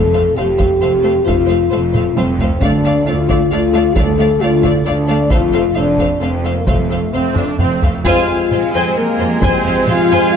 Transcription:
Already playing: F1 F2 A4
0.13 A3 C5 F5
0.36 F1 F2 A3 G4 C5 F5
0.58 A3 C5 F5, taiko
0.81 F1 F2 A3 C5 F5
1.03 A3 C5 F5
1.24 F1 F2 A3 F4 C5 F5, taiko
1.47 A3 C5 F5
1.71 F1 F2 A3 C5 F5
1.93 A3 C5 F5, taiko mid
2.15 F1 F2 A3 C4 C5 F5, taiko high
2.39 A3 C5 F5, taiko low
2.60 D2 A3 D4 D5 F5, taiko
2.84 A3 D5 F5
3.06 D2 A3 F4 D5 F5
3.29 A3 D5 F5, taiko
3.52 D2 A3 F4 D5 F5
3.73 A3 D5 F5
3.96 D2 A3 A4 D5 F5, taiko
4.18 A3 D5 F5
4.40 D2 A3 F4 D5 F5
4.63 A3 D5 F5, taiko
4.85 D2 A3 D4 D5 F5
5.08 A3 D5 F5
5.30 F1 F2 A3 F4 C5 F5, taiko
5.52 A3 C5 F5
5.75 F1 F2 A3 D4 C5 F5
5.98 A3 C5 F5, taiko
6.21 F1 F2 A3 C4 C5 F5
6.44 A3 C5 F5
6.55 A#3
6.66 F1 F2 A3 C5 F5, taiko
6.90 A3 C5 F5
7.13 F1 F2 C4 C5 F5
7.36 D4 C5 F5, taiko low-mid
7.58 F1 F2 C4 C5 F5, taiko low-mid
7.83 A3 C5 F5, taiko low
8.04 F2 C3 G#3 C4 F4 C5 F5 G#5, taiko
8.28 F2 G#4 F5
8.51 F2 G#3 F4 C5, taiko mid
8.74 F2 C4 C5 G#5
8.96 F3 A#3 A#4
9.19 F2 F4 C5
9.41 F2 C4 C5 G#5, taiko
9.65 F2 G#4 F5
9.87 F2 F4 C5 F5, taiko mid
10.11 F2 C5 G#5
10.32 G#3

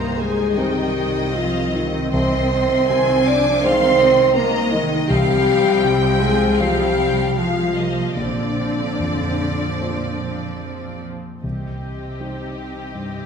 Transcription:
Already playing: C2 G2 D#3 D#4 A#4 C5
0.00 A#3 A#5
0.18 G#3 G#4 G#5
0.56 G3 C4 D#4 G4 C5 D#5 G5
1.33 F3 C4 F4 F5
1.72 D#3 D#4 D#5
2.13 C2 D#3 C4 C5 D#5 C6
2.89 C3 D#3 G#5
3.26 F3 D4 D5 D6
3.61 D#3 G#3 C4 D#4 C5 F5 C6
3.99 D#3 D#5
4.34 D#3 G#3 A#3 A#4 D#5 A#5
4.71 D#3 D#4 D#5
5.08 C2 F3 G3 C4 G4 F5 G5
5.84 C3 G5
6.20 G#3 G#4 G#5
6.58 F3 G3 F4 G4 C5 F5 G5
7.36 F3 G#3 F4 F5
7.76 A#3 D#5
8.16 A#1 D3 F3 C4 D4 D5
9.00 F2
9.81 A#3 F4 C5
11.42 C2 C3 C4 G4 D#5
12.20 G3 D#4 C5
12.95 G2

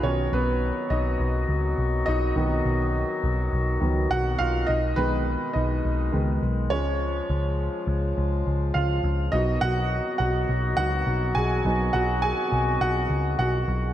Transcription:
0.03 B1 D#3 F#3 B3 C#4 F#4 C#5
0.33 B1 B3 B4
0.90 B1 D#4 D#5
1.20 B1
1.49 C#2
1.78 B1
2.06 B1 D#4 D#5
2.36 B1 D#3 F#3 B3
2.65 B1
3.24 B1
3.53 B1
3.81 C#2 D#3 F#3 B3
4.11 B1 F#4 F#5
4.39 B1 F4 F5
4.67 B1 B2 G#3 D#4 D#5
4.96 B1 D#3 G#3 B3 B4
5.53 B1 D#4 D#5
5.85 B1
6.12 C#2 D#3 G#3 B3
6.43 B1
6.70 C#2 C#3 F3 G#3 C#4 F4 C#5
7.30 C#2
7.87 C#2
8.18 C#2
8.47 C#2
8.74 C#2 F4 F5
9.04 C#2
9.32 B1 D#3 F#3 B3 D#4 F#4 D#5
9.61 B1 F#4 F#5
10.18 B1 F#4 F#5
10.49 B1
10.77 C#2 F#3 B3 D#4 F#4 F#5
11.07 B1
11.35 B1 G#4 G#5
11.65 B1 F#3 B3 D#4
11.93 B1 F#4 F#5
12.22 G#4 G#5
12.52 B1
12.81 B1 F#4 F#5
13.10 C#2
13.39 B1 F#4 F#5
13.68 B1

